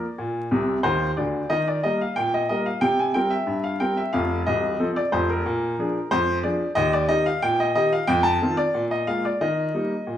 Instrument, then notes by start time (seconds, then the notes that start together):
upright piano
Already playing: D5
0.18 A#2
0.51 C2 C3
0.83 D#2 D#3 C5
1.17 D2 D3 D5
1.50 D#3 D#5
1.68 D5
1.83 G3 A#3 A#4 D#5
2.01 F5
2.16 A#2 G5
2.34 D#5
2.49 G3 A#3 A#4 D#5
2.66 F5
2.81 C3 G5
2.99 G#5
3.14 G3 C4 A#4 G5
3.30 E5
3.47 G2
3.64 F5
3.80 G3 C4 A#4 G5
3.97 E5
4.13 F1 F2 F5
4.46 C1 C2 D#5
4.80 F3 C4 A4
4.96 D5
5.12 F1 F2 C5
5.30 A#4
5.46 A#2
5.79 F3 D4 G#4
6.11 F2 C5
6.43 F3 D4 G#4 D5
6.75 D#2 D#5
6.93 D5
7.09 D#3 D#4 G4 D#5
7.26 F5
7.42 A#2 G5
7.60 D#5
7.75 D#3 D#4 G4 D#5
7.93 F5
8.07 F2 G5
8.23 A5
8.42 D#3 C4 F4
8.57 D5
8.74 A#2
8.91 D#5
9.07 G#3 A#3 F4 F5
9.25 D5
9.41 D#3 D#5
9.74 G3 A#3 D#4
10.07 A#2